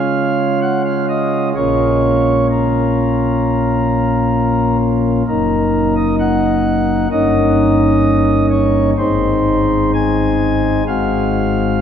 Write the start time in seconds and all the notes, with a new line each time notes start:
Already playing: C#3 G#3 C#4 F4 F5
0.62 F#5
0.85 F5
1.09 D#5
1.56 A#1 A#2 A#3 C#4 F4 C#5
2.50 A#4
5.27 F#1 F#2 A#3 D#4 A#4
5.96 D#5
6.19 F#5
7.12 G1 G2 A#3 C#4 D#4 D#5
8.51 C#5
8.98 G#1 G#2 G#3 C4 D#4 C5
9.95 G#5
10.87 G#1 G#2 G#3 C4 F#4 F5